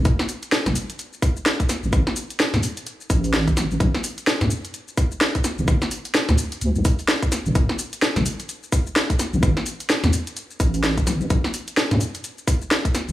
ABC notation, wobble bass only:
X:1
M:4/4
L:1/16
Q:"Swing 16ths" 1/4=128
K:Dm
V:1 name="Wobble bass" clef=bass
D,,, z4 A,,, z8 z A,,, | A,,, z4 E,, z4 A,,,4 A,,,2 | B,,, z4 F,, z8 z F,,, | G,,, z4 D,, z2 D,, C,, z4 z G,,, |
D,,, z4 A,,, z8 z A,,, | A,,, z4 E,, z4 A,,,4 A,,,2 | B,,, z4 F,, z8 z F,,, |]